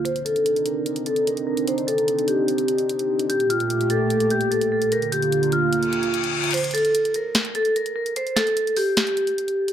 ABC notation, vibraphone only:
X:1
M:4/4
L:1/8
Q:1/4=148
K:Cdor
V:1 name="Vibraphone"
c A2 B2 A B B | c A2 G4- G | G F2 A2 G A A | B G2 F4- F |
c A2 B2 A B B | c A2 G4- G |]